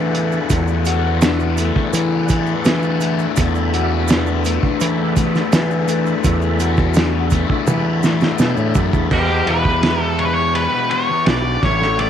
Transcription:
Already playing: harmonium E2, picked electric bass E3, distorted electric guitar E3 A3 D4 F#4, tonewheel organ A4 D5 F#5 B5
0.15 distorted electric guitar A3, closed hi-hat
0.32 shaker
0.50 picked electric bass E2, distorted electric guitar E2, kick, closed hi-hat, shaker
0.68 shaker
0.85 distorted electric guitar F#4, closed hi-hat, shaker
1.21 distorted electric guitar D4, snare, closed hi-hat, shaker
1.40 shaker
1.57 distorted electric guitar A3, closed hi-hat, shaker
1.76 kick
1.93 picked electric bass E3, distorted electric guitar E3, closed hi-hat, shaker
2.29 distorted electric guitar A3, kick, closed hi-hat, shaker
2.47 shaker
2.65 picked electric bass E3, distorted electric guitar D4, snare, closed hi-hat, shaker
2.82 shaker
3.01 distorted electric guitar A3, closed hi-hat, shaker
3.19 shaker
3.36 picked electric bass E2, distorted electric guitar E2, tonewheel organ E5, kick, closed hi-hat, shaker
3.55 shaker
3.74 distorted electric guitar F#4, closed hi-hat
4.08 distorted electric guitar D4, snare, closed hi-hat, shaker
4.27 shaker
4.45 distorted electric guitar A3, closed hi-hat, shaker
4.63 kick
4.80 distorted electric guitar E3, picked electric bass E3, closed hi-hat, shaker
5.16 distorted electric guitar A3, kick, closed hi-hat, shaker
5.35 snare, shaker
5.52 picked electric bass E3, distorted electric guitar D4, snare, closed hi-hat, shaker
5.71 shaker
5.87 distorted electric guitar A3, closed hi-hat, shaker
6.06 shaker
6.24 distorted electric guitar E2, picked electric bass E2, kick, closed hi-hat, shaker
6.42 shaker
6.60 distorted electric guitar F#4, closed hi-hat, shaker
6.77 kick, shaker
6.94 distorted electric guitar D4, snare, closed hi-hat, shaker
7.30 distorted electric guitar A3, kick, closed hi-hat, shaker
7.50 kick
7.67 distorted electric guitar E3, picked electric bass E3, high tom, shaker
8.03 distorted electric guitar A3, snare, shaker
8.21 snare, shaker
8.38 picked electric bass B2, distorted electric guitar D4, snare, shaker
8.57 picked electric bass A2, shaker
8.74 picked electric bass F#2, distorted electric guitar A3, kick, shaker
8.93 picked electric bass E2, kick, shaker
9.11 distorted electric guitar E2 B2 E3, picked electric bass E2, tonewheel organ E4 G4 B4 G5, lead electric guitar G4, kick, crash
9.30 muted distorted electric guitar stroke
9.46 picked electric bass E2, distorted electric guitar E2 B2 E3, lead electric guitar B4, ride
9.65 distorted electric guitar B2 E3, kick
9.82 distorted electric guitar E2 B2 E3, snare, ride
10.02 lead electric guitar A4
10.19 lead electric guitar C#5, ride
10.25 lead electric guitar B4
10.34 lead electric guitar C#5
10.55 lead electric guitar B4, ride
10.72 distorted electric guitar B2 E3
10.91 distorted electric guitar E2 B2 E3, lead electric guitar C#5, ride
11.09 muted distorted electric guitar stroke
11.26 picked electric bass B1, distorted electric guitar E2 B2 E3, lead electric guitar D5, snare, ride
11.63 picked electric bass A1, distorted electric guitar A2 E3 A3, tonewheel organ D4 A4 E5, lead electric guitar C#5, kick, snare, ride
11.81 distorted electric guitar E3 A3, snare
11.98 distorted electric guitar A2 E3 A3, lead electric guitar D5, ride

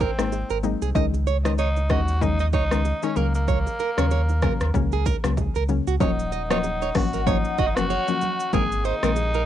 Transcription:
0.00 tenor saxophone C4, nylon-string guitar A#4, kick, low bongo, shaker
0.19 sub bass G#1, synth pluck G#3 A#3 C4 D#4, cross-stick, shaker
0.32 high bongo, shaker
0.50 sub bass G#1, nylon-string guitar A#4, shaker
0.63 synth pluck G#3 A#3 C4 D#4, low conga, shaker
0.82 sub bass C2, nylon-string guitar G#4, shaker
0.95 sub bass C#2, synth pluck D#3 G#3 C#4 D#4, nylon-string guitar D#5, kick, low conga, shaker
1.14 high bongo, shaker
1.27 nylon-string guitar C#5, low bongo, shaker
1.45 synth pluck D#3 G#3 C#4 D#4, nylon-string guitar D#5, cross-stick, shaker
1.58 tenor saxophone D#4, nylon-string guitar C#5, high bongo, shaker
1.76 low bongo, shaker
1.90 sub bass D#2, synth pluck D#3 G#3 C#4 D#4, tenor saxophone F#4, nylon-string guitar D#5, kick, cross-stick, shaker
2.08 shaker
2.21 synth pluck D#3 G#3 C#4 D#4, tenor saxophone D#4, kick, low conga, shaker
2.39 tenor saxophone D#4, nylon-string guitar D#5, shaker
2.53 sub bass C#2, tenor saxophone D#4, nylon-string guitar C#5, kick, low bongo, shaker
2.71 synth pluck D#3 G#3 C#4 D#4, cross-stick, shaker
2.85 high bongo, shaker
3.02 synth pluck D#3 G#3 C#4 D#4, tenor saxophone C#4, nylon-string guitar C#5, shaker
3.16 sub bass C#2, synth pluck C#3 F#3 A#3 C#4, tenor saxophone A#3, nylon-string guitar A#4, low conga, shaker
3.35 tenor saxophone A#3, shaker
3.48 nylon-string guitar C#5, kick, low conga, shaker
3.66 high bongo, shaker
3.79 nylon-string guitar A#4, low bongo, shaker
3.97 sub bass D#2, synth pluck C#3 F#3 A#3 C#4, nylon-string guitar C#5, cross-stick, shaker
4.11 nylon-string guitar C#5, high bongo, shaker
4.29 low bongo, shaker
4.42 synth pluck C#3 F#3 A#3 C#4, nylon-string guitar A#4, kick, cross-stick, shaker
4.61 sub bass D#2, cross-stick, shaker
4.74 sub bass C#2, synth pluck C#3 F#3 A#3 C#4, kick, low conga, shaker
4.92 nylon-string guitar G#4, shaker
5.06 nylon-string guitar A#4, kick, low bongo, shaker
5.24 sub bass C#2, synth pluck C#3 F#3 A#3 C#4, cross-stick, shaker
5.37 kick, high bongo, shaker
5.55 sub bass C#2, nylon-string guitar A#4, shaker
5.69 synth pluck C#3 F#3 A#3 C#4, low conga, shaker
5.87 sub bass C#2, nylon-string guitar F#4, shaker
6.00 sub bass D#1, brass ensemble D#3 C#4 F#5, synth pluck F3 F#3 A#3 C#4, tenor saxophone D#4, nylon-string guitar C#5, kick, low conga, shaker
6.19 shaker
6.32 nylon-string guitar D#5, shaker
6.50 synth pluck F3 F#3 A#3 C#4, tenor saxophone D#4, nylon-string guitar C#5, cross-stick, shaker
6.63 high bongo, shaker
6.82 nylon-string guitar C#5, low bongo, shaker
6.95 sub bass G#1, synth pluck F3 F#3 A#3 C#4, tenor saxophone F#4, kick, cross-stick, open hi-hat, shaker
7.13 nylon-string guitar A#4, shaker
7.27 synth pluck F3 F#3 A#3 C#4, tenor saxophone D#4, nylon-string guitar C#5, kick, low conga, shaker
7.45 shaker
7.58 sub bass F#1, tenor saxophone F#4, nylon-string guitar D#5, kick, low bongo, shaker
7.67 tenor saxophone D#4
7.75 synth pluck F3 F#3 A#3 C#4, tenor saxophone F#4, cross-stick, shaker
7.90 nylon-string guitar C#5, high bongo, shaker
8.08 synth pluck F3 F#3 A#3 C#4, shaker
8.21 low conga, shaker
8.40 shaker
8.53 sub bass G#1, brass ensemble C3 A#3 G#4, synth pluck D#3 G#3 A#3 C4, tenor saxophone G#4, nylon-string guitar A#4, kick, low conga, shaker
8.72 shaker
8.85 tenor saxophone D#4, nylon-string guitar C5, shaker
9.03 sub bass A#1, synth pluck D#3 G#3 A#3 C4, nylon-string guitar A#4, cross-stick, shaker
9.16 high bongo, shaker
9.34 nylon-string guitar A#4, low bongo, shaker

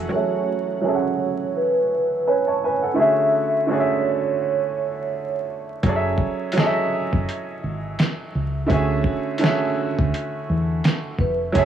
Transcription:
Already playing: upright piano F#3 C#4 A4 E5 G#5, ambient pad A3 F#4
0.09 upright piano F#3 C#4 G#4
0.13 upright piano A4 E5, vibraphone C#5
0.81 upright piano F#3 C#4 G#4, vibraphone C#5
0.86 upright piano A4 E5
0.95 upright piano F#5
1.57 vibraphone B4
2.27 upright piano B4 G#5, vibraphone C#5
2.47 upright piano C#5 A5
2.64 upright piano B4 G#5
2.83 upright piano A4 F#5
2.94 upright piano D3 A3 C#4
2.98 upright piano F#4 G#4 E5, vibraphone E5
3.67 upright piano D3 A3 C#4 F#4
3.71 upright piano G#4 D5, vibraphone C#5
3.80 upright piano E5
4.42 vibraphone C#5
5.83 fingered electric bass F#1, upright piano F#3 C#4 G#4, kick, closed hi-hat
5.88 upright piano A4 D5
5.96 upright piano E5
6.18 kick
6.52 upright piano F#3 C#4, closed hi-hat
6.57 upright piano G#4 A4 D#5, snare
6.66 upright piano E5
7.13 fingered electric bass F#1, kick
7.29 closed hi-hat
7.63 fingered electric bass G#1
7.99 snare, closed hi-hat
8.35 fingered electric bass C#2
8.66 upright piano D3 A3 C#4, kick, closed hi-hat
8.70 fingered electric bass D2, upright piano F#4 G#4 E5
9.04 kick
9.38 upright piano D3 A3 C#4, closed hi-hat
9.43 upright piano F#4 G#4 E5, snare
9.99 fingered electric bass D2, kick
10.14 closed hi-hat
10.50 fingered electric bass E2
10.84 snare, closed hi-hat
11.18 fingered electric bass F1, vibraphone B4, kick
11.52 fingered electric bass F#1, upright piano F#3 C#4 G#4, vibraphone C#5, kick, closed hi-hat, shaker
11.58 upright piano A4 E5

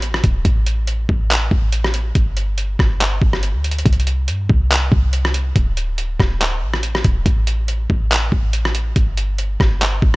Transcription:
Already playing: 808-style bass A1
0.02 closed hi-hat
0.14 cross-stick
0.24 808-style bass D1, kick, closed hi-hat
0.45 808-style bass A1, kick, closed hi-hat
0.66 closed hi-hat
0.87 closed hi-hat
1.09 808-style bass A1, kick
1.30 clap, closed hi-hat
1.51 808-style bass A1, kick
1.72 closed hi-hat
1.84 cross-stick
1.94 closed hi-hat
2.15 808-style bass G1, kick, closed hi-hat
2.37 closed hi-hat
2.58 closed hi-hat
2.79 808-style bass G1, kick, cross-stick
3.00 clap, closed hi-hat
3.22 808-style bass G1, kick
3.33 cross-stick
3.43 closed hi-hat
3.54 808-style bass D2
3.64 closed hi-hat
3.71 closed hi-hat
3.79 closed hi-hat
3.86 808-style bass C2, kick, closed hi-hat
3.93 closed hi-hat
4.00 closed hi-hat
4.07 closed hi-hat
4.28 808-style bass G2, closed hi-hat
4.49 808-style bass C2, kick
4.71 clap, closed hi-hat
4.92 808-style bass C2, kick
5.13 closed hi-hat
5.25 cross-stick
5.34 closed hi-hat
5.56 808-style bass D1, kick, closed hi-hat
5.77 closed hi-hat
5.98 closed hi-hat
6.20 808-style bass D1, kick, cross-stick
6.41 clap, closed hi-hat
6.62 808-style bass A1
6.74 cross-stick
6.83 closed hi-hat
6.95 cross-stick
7.04 808-style bass D1, kick, closed hi-hat
7.26 808-style bass A1, kick, closed hi-hat
7.47 closed hi-hat
7.68 closed hi-hat
7.90 808-style bass A1, kick
8.11 clap, closed hi-hat
8.32 808-style bass A1, kick
8.53 closed hi-hat
8.65 cross-stick
8.75 closed hi-hat
8.96 808-style bass G1, kick, closed hi-hat
9.17 closed hi-hat
9.38 closed hi-hat
9.60 808-style bass G1, kick, cross-stick
9.81 clap, closed hi-hat
10.02 808-style bass G1, kick

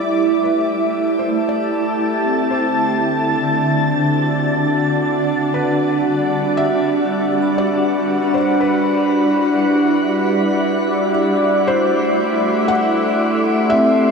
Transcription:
Already playing: ambient pad A3 E4 D5
0.44 felt piano B4
0.81 ambient pad G4 A5
1.19 felt piano C5
1.49 felt piano D5
2.25 vibraphone C4
2.51 ambient pad D3, felt piano C5
2.70 ambient pad D4
3.54 ambient pad F#4
5.54 ambient pad G3, felt piano B4
6.57 felt piano E5
6.81 ambient pad B4
7.42 vibraphone B5
7.58 felt piano D5
8.22 vibraphone D4
8.34 felt piano C5
8.60 felt piano B4
8.84 ambient pad E4
9.54 ambient pad D5
11.65 ambient pad A3, synth drone A3, felt piano C5
12.68 felt piano F#5
13.02 ambient pad G4 C6
13.70 vibraphone C4, felt piano E5

